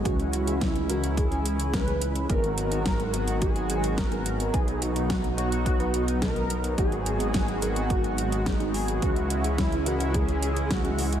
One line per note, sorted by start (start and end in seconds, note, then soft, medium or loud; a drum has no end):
0.00 2.26 G#3 medium
0.05 2.27 C#2 medium
0.05 0.44 E3 medium
0.05 0.44 G#3 medium
0.05 2.27 C#4 medium
0.05 0.44 C#4 medium
0.05 2.27 E4 medium
0.05 0.63 F#4 loud
0.05 0.44 G#4 medium
0.05 kick loud
0.05 closed hi-hat medium
0.20 closed hi-hat soft
0.33 closed hi-hat medium
0.47 0.86 E3 medium
0.47 0.86 G#3 medium
0.47 0.86 C#4 medium
0.47 0.86 G#4 medium
0.47 closed hi-hat medium
0.61 0.91 E4 loud
0.61 kick loud
0.61 snare loud
0.61 closed hi-hat medium
0.76 closed hi-hat soft
0.89 1.28 E3 medium
0.89 1.28 G#3 medium
0.89 1.28 C#4 medium
0.89 1.19 F#4 medium
0.89 1.28 A#4 loud
0.89 closed hi-hat loud
1.04 closed hi-hat medium
1.17 1.73 G#4 loud
1.17 kick loud
1.17 closed hi-hat medium
1.31 1.84 E3 medium
1.31 1.84 G#3 medium
1.31 1.84 C#4 medium
1.31 1.84 G#4 medium
1.31 closed hi-hat soft
1.46 closed hi-hat medium
1.60 closed hi-hat medium
1.74 2.26 B4 loud
1.74 kick loud
1.74 snare loud
1.74 closed hi-hat medium
1.87 2.26 E3 medium
1.87 2.26 G#3 medium
1.87 2.26 C#4 medium
1.87 2.26 G#4 medium
1.87 closed hi-hat soft
2.02 closed hi-hat loud
2.15 closed hi-hat soft
2.29 4.51 G#1 medium
2.29 4.52 D#3 medium
2.29 2.68 F#3 medium
2.29 8.98 F#3 medium
2.29 4.52 G#3 medium
2.29 2.68 B3 medium
2.29 8.98 B3 medium
2.29 2.68 D#4 medium
2.29 4.52 F#4 medium
2.29 2.68 G#4 medium
2.29 3.37 A#4 loud
2.29 kick loud
2.29 closed hi-hat medium
2.44 closed hi-hat soft
2.58 closed hi-hat medium
2.71 3.10 F#3 medium
2.71 3.10 B3 medium
2.71 3.10 D#4 medium
2.71 3.10 G#4 medium
2.71 closed hi-hat medium
2.86 kick loud
2.86 snare loud
2.86 closed hi-hat medium
3.00 closed hi-hat soft
3.13 3.52 F#3 loud
3.13 3.52 B3 medium
3.13 3.52 D#4 medium
3.13 3.52 A#4 loud
3.13 closed hi-hat loud
3.28 closed hi-hat medium
3.41 3.99 G#4 loud
3.41 kick loud
3.41 closed hi-hat medium
3.55 4.08 F#3 medium
3.55 4.08 B3 medium
3.55 4.08 D#4 medium
3.55 4.08 G#4 loud
3.55 closed hi-hat soft
3.70 closed hi-hat medium
3.84 closed hi-hat medium
3.97 4.55 A#4 loud
3.97 kick loud
3.97 snare loud
3.97 closed hi-hat medium
4.11 4.50 F#3 medium
4.11 4.50 B3 medium
4.11 4.50 D#4 medium
4.11 4.50 G#4 medium
4.11 closed hi-hat soft
4.26 closed hi-hat loud
4.40 closed hi-hat soft
4.54 6.75 B1 medium
4.54 4.92 F#3 medium
4.54 4.92 B3 medium
4.54 4.92 D#4 medium
4.54 6.76 D#4 loud
4.54 4.83 G#4 loud
4.54 4.92 B4 medium
4.54 kick loud
4.54 closed hi-hat medium
4.68 closed hi-hat soft
4.82 5.37 F#4 loud
4.82 closed hi-hat medium
4.96 5.34 F#3 medium
4.96 5.34 B3 medium
4.96 5.34 D#4 medium
4.96 5.34 B4 medium
4.96 closed hi-hat medium
5.10 kick loud
5.10 snare loud
5.10 closed hi-hat medium
5.24 closed hi-hat soft
5.37 5.76 F#3 loud
5.37 5.76 B3 medium
5.37 5.76 D#4 medium
5.37 6.18 F#4 loud
5.37 5.76 C#5 loud
5.37 closed hi-hat medium
5.52 closed hi-hat medium
5.66 kick loud
5.66 closed hi-hat medium
5.80 6.32 F#3 medium
5.80 6.32 B3 medium
5.80 6.32 D#4 medium
5.80 6.32 B4 medium
5.80 closed hi-hat soft
5.94 closed hi-hat medium
6.08 closed hi-hat medium
6.22 6.74 A#4 loud
6.22 kick loud
6.22 snare loud
6.22 closed hi-hat soft
6.36 6.75 F#3 medium
6.36 6.74 B3 medium
6.36 6.75 D#4 medium
6.36 6.74 D#5 medium
6.36 closed hi-hat soft
6.50 closed hi-hat medium
6.64 closed hi-hat soft
6.78 9.00 G#1 medium
6.78 9.00 D#3 medium
6.78 7.17 F#3 medium
6.78 11.20 G#3 medium
6.78 7.17 B3 medium
6.78 7.17 D#4 medium
6.78 9.00 F#4 loud
6.78 7.17 G#4 medium
6.78 7.91 G#4 loud
6.78 kick loud
6.78 closed hi-hat medium
6.92 closed hi-hat soft
7.06 closed hi-hat medium
7.20 7.59 F#3 medium
7.20 7.59 B3 medium
7.20 7.59 D#4 medium
7.20 7.59 G#4 medium
7.20 closed hi-hat medium
7.34 kick loud
7.34 snare loud
7.34 closed hi-hat medium
7.48 closed hi-hat soft
7.62 8.01 F#3 medium
7.62 8.01 B3 medium
7.62 8.01 D#4 medium
7.62 8.01 A#4 loud
7.62 closed hi-hat medium
7.76 closed hi-hat soft
7.90 8.48 F#4 loud
7.90 kick loud
7.90 closed hi-hat medium
8.04 8.57 F#3 medium
8.04 8.57 B3 medium
8.04 8.57 D#4 medium
8.04 8.57 G#4 medium
8.04 closed hi-hat soft
8.18 closed hi-hat medium
8.32 closed hi-hat soft
8.46 8.76 D#4 medium
8.46 kick loud
8.46 snare loud
8.46 closed hi-hat medium
8.60 8.99 F#3 medium
8.60 8.99 B3 medium
8.60 8.99 D#4 medium
8.60 8.99 G#4 medium
8.60 closed hi-hat soft
8.74 9.02 G#4 loud
8.74 open hi-hat medium
8.88 closed hi-hat soft
9.02 11.20 C#2 medium
9.02 9.41 E3 medium
9.02 9.41 G#3 medium
9.02 9.41 C#4 medium
9.02 11.20 C#4 medium
9.02 11.20 E4 medium
9.02 9.60 F#4 loud
9.02 9.41 G#4 medium
9.02 kick loud
9.02 closed hi-hat soft
9.16 closed hi-hat soft
9.30 closed hi-hat medium
9.44 9.83 E3 medium
9.44 9.83 G#3 medium
9.44 9.83 C#4 medium
9.44 9.83 G#4 medium
9.44 closed hi-hat soft
9.58 9.88 E4 loud
9.58 kick loud
9.58 snare loud
9.58 closed hi-hat medium
9.72 closed hi-hat soft
9.86 10.25 E3 loud
9.86 10.25 G#3 medium
9.86 10.25 C#4 medium
9.86 10.16 F#4 medium
9.86 10.25 A#4 loud
9.86 closed hi-hat medium
10.00 closed hi-hat medium
10.14 10.72 G#4 loud
10.14 kick loud
10.14 closed hi-hat soft
10.28 10.81 E3 medium
10.28 10.81 G#3 medium
10.28 10.81 C#4 medium
10.28 10.81 G#4 loud
10.28 closed hi-hat soft
10.43 closed hi-hat medium
10.56 closed hi-hat soft
10.70 11.20 F#4 loud
10.70 kick loud
10.70 snare loud
10.70 closed hi-hat soft
10.84 11.20 E3 medium
10.84 11.20 G#3 medium
10.84 11.20 C#4 medium
10.84 11.20 G#4 medium
10.84 closed hi-hat soft
10.99 open hi-hat medium
11.13 closed hi-hat soft